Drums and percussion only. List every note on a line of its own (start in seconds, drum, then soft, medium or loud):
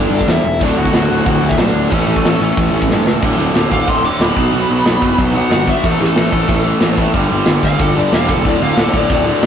0.21 kick medium
0.28 snare loud
0.28 crash medium
0.60 kick loud
0.60 crash medium
0.85 kick medium
0.93 snare loud
0.93 crash medium
1.26 kick loud
1.26 crash medium
1.51 kick medium
1.58 snare loud
1.58 crash medium
1.92 kick loud
1.92 crash medium
2.16 kick medium
2.25 snare loud
2.25 crash medium
2.57 kick loud
2.57 crash medium
2.82 kick medium
2.91 snare medium
3.07 snare medium
3.22 kick loud
3.22 crash loud
3.22 crash medium
3.39 crash medium
3.55 snare loud
3.55 crash medium
3.72 kick medium
3.72 crash medium
3.88 kick loud
3.88 crash medium
4.04 crash medium
4.21 snare loud
4.21 crash medium
4.36 kick loud
4.36 crash medium
4.53 crash medium
4.69 crash medium
4.86 snare loud
4.86 crash medium
5.02 kick medium
5.02 crash medium
5.18 kick loud
5.18 crash medium
5.35 crash medium
5.51 snare loud
5.51 crash medium
5.67 kick medium
5.67 crash medium
5.84 kick loud
5.84 crash medium
5.99 crash medium
6.16 snare loud
6.16 crash medium
6.32 kick medium
6.32 crash medium
6.48 kick loud
6.48 crash medium
6.65 crash medium
6.80 snare loud
6.80 crash medium
6.98 kick medium
6.98 crash medium
7.13 kick loud
7.13 crash medium
7.29 crash medium
7.46 snare loud
7.46 crash medium
7.63 kick medium
7.63 crash medium
7.79 kick loud
7.79 crash medium
7.96 crash medium
8.12 snare loud
8.12 crash medium
8.29 kick medium
8.29 crash medium
8.45 kick loud
8.45 crash medium
8.62 crash medium
8.77 snare loud
8.77 crash medium
8.93 kick medium
8.93 crash medium
9.10 kick loud
9.10 crash loud
9.26 crash medium
9.43 snare loud
9.43 crash medium